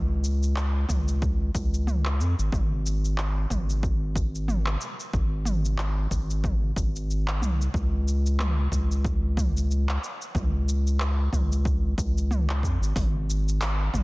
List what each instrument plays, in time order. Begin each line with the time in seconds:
Already playing: analog synth bass C#2
0.24 shaker
0.43 shaker
0.56 clap, shaker
0.89 analog synth bass C#2, kick, mid tom, shaker
1.08 shaker
1.22 kick, shaker
1.55 analog synth bass C#2, kick, shaker
1.74 shaker
1.87 mid tom, shaker
2.05 clap
2.20 analog synth bass F2, shaker
2.39 analog synth bass G#1, shaker
2.52 analog synth bass G#1, kick, mid tom, shaker
2.86 shaker
3.05 shaker
3.18 clap, shaker
3.50 analog synth bass G#1, kick, mid tom, shaker
3.70 shaker
3.83 kick, shaker
4.16 kick, shaker
4.35 shaker
4.48 mid tom, shaker
4.66 clap
4.81 shaker
5.00 shaker
5.13 analog synth bass G#1, kick, shaker
5.45 mid tom, shaker
5.65 shaker
5.78 clap, shaker
6.11 analog synth bass G#1, kick, shaker
6.30 shaker
6.44 kick, mid tom, shaker
6.76 analog synth bass G#1, kick, shaker
6.96 shaker
7.11 shaker
7.28 clap
7.41 analog synth bass C2, mid tom, shaker
7.62 shaker
7.74 analog synth bass C#2, kick, shaker
8.08 shaker
8.26 shaker
8.40 clap, mid tom, shaker
8.72 analog synth bass C#2, kick, shaker
8.92 shaker
9.05 kick, shaker
9.37 kick, mid tom, shaker
9.57 shaker
9.71 shaker
9.89 clap
10.04 shaker
10.22 shaker
10.35 analog synth bass C#2, kick, mid tom, shaker
10.69 shaker
10.87 shaker
11.00 clap, shaker
11.33 analog synth bass C#2, kick, mid tom, shaker
11.52 shaker
11.65 kick, shaker
11.98 analog synth bass C#2, kick, shaker
12.18 shaker
12.31 mid tom, shaker
12.50 clap
12.63 analog synth bass F2, kick, shaker
12.81 analog synth bass G#1, shaker
12.96 analog synth bass G#1, kick, mid tom, open hi-hat, shaker
13.30 shaker
13.49 shaker
13.61 clap, open hi-hat, shaker
13.94 analog synth bass G#1, kick, mid tom, shaker